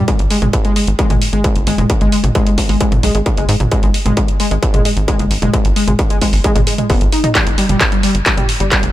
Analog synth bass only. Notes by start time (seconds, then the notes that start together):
0.19 G#1
0.42 G#1
0.87 G#1
1.10 G#1
1.33 G#1
1.56 F#1
1.67 G#1
1.78 F#1
2.01 G#1
2.24 G#1
2.69 G#1
2.92 G#1
3.03 B1
3.15 G#1
3.37 F#1
3.49 G#2
3.60 G#1
3.83 G#1
4.06 G#1
4.51 G#1
4.74 G#1
4.97 G#1
5.19 F#1
5.31 G#1
5.42 F#1
5.65 G#1
5.88 G#1
6.33 G#1
6.56 G#1
6.90 F#1
7.01 G#1
7.47 G1
7.69 G1
8.15 G1
8.37 G1
8.60 G1
8.83 F1